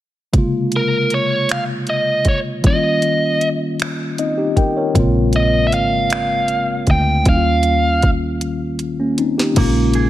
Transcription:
0.33 C3 C#3 G#3 A#3, kick, closed hi-hat
0.38 F4
0.72 closed hi-hat
0.76 A#4
1.10 C#5, closed hi-hat
1.49 F5, finger snap, closed hi-hat
1.87 D#5, closed hi-hat
2.25 C#5, kick, closed hi-hat
2.62 D#3 G3 A#3 C#4, kick, closed hi-hat
2.67 E4 D#5
2.74 F4
3.02 closed hi-hat
3.41 closed hi-hat
3.80 finger snap, closed hi-hat
4.18 C4 D#4 D#5, closed hi-hat
4.38 D#4 G4
4.57 G4 A#4 G5, kick, closed hi-hat
4.77 A#4 C#5
4.94 A#1 C3 G#3 A#3, kick, closed hi-hat
4.98 C#3 C4 F4
5.33 D#5, closed hi-hat
5.67 E5
5.72 G#1 F5, closed hi-hat
6.10 finger snap, closed hi-hat
6.48 closed hi-hat
6.87 D2, kick, closed hi-hat
6.91 G5
7.25 D#2 D#3 G3 A#3 C#4, kick, closed hi-hat
7.29 E4 F5
7.36 F4
7.63 closed hi-hat
8.02 kick, closed hi-hat
8.41 closed hi-hat
8.79 closed hi-hat
9.00 A#3 C#4
9.18 C4 D#4, closed hi-hat
9.38 D#4 G4, snare
9.54 A#1 C#3 G#3 A#3, kick, closed hi-hat, crash
9.59 C#4 F4
9.94 G#4, closed hi-hat

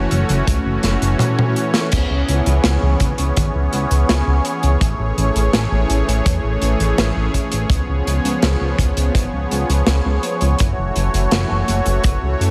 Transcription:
Already playing: E3 A3 C#4 F#4 C#5
0.11 F#1, closed hi-hat
0.29 F#1, closed hi-hat
0.47 C#2, kick, closed hi-hat
0.66 F#1
0.83 F#1, snare, closed hi-hat
1.02 F#1, closed hi-hat
1.19 closed hi-hat, mid tom
1.39 mid tom
1.56 closed hi-hat
1.74 snare, closed hi-hat
1.92 C#2 B3 G#4 C#5, kick, closed hi-hat, crash
2.10 C#2
2.28 C#2, closed hi-hat
2.46 C#2, closed hi-hat
2.64 C#2, snare, closed hi-hat
2.83 C#2
3.00 C#2, kick, closed hi-hat
3.18 C#2, closed hi-hat
3.36 G#1, kick, closed hi-hat
3.55 C#2
3.73 C#2, closed hi-hat
3.91 C#2, closed hi-hat
4.09 C#2, snare, closed hi-hat
4.27 C#2
4.45 closed hi-hat
4.63 C#2, closed hi-hat
4.81 A1 E3 A3, kick, closed hi-hat
5.00 A1
5.17 A1, closed hi-hat
5.36 A1, closed hi-hat
5.53 A1, snare, closed hi-hat
5.72 A1
5.90 A1, closed hi-hat
6.08 A1, closed hi-hat
6.26 E2, kick, closed hi-hat
6.44 A1
6.62 A1, closed hi-hat
6.80 A1, closed hi-hat
6.98 A1, snare, closed hi-hat
7.16 A1
7.34 kick, closed hi-hat
7.52 A1, closed hi-hat
7.70 C#2 F3 B3 C#5, kick, closed hi-hat
7.89 C#2
8.07 C#2, closed hi-hat
8.25 C#2, closed hi-hat
8.42 C#2, snare, closed hi-hat
8.61 C#2
8.79 C#2, kick, closed hi-hat
8.97 C#2, closed hi-hat
9.15 G#1, kick, closed hi-hat
9.33 C#2
9.51 C#2, closed hi-hat
9.69 C#2, closed hi-hat
9.87 C#2, snare, closed hi-hat
10.05 C#2
10.23 closed hi-hat
10.41 C#2, closed hi-hat
10.59 F#1 E3 A3 F#4, kick, closed hi-hat
10.78 F#1
10.96 F#1, closed hi-hat
11.14 F#1, closed hi-hat
11.31 F#1, snare, closed hi-hat
11.50 F#1
11.68 F#1, closed hi-hat
11.86 F#1, closed hi-hat
12.04 F#1, kick, closed hi-hat
12.22 C#2
12.40 F#2, closed hi-hat

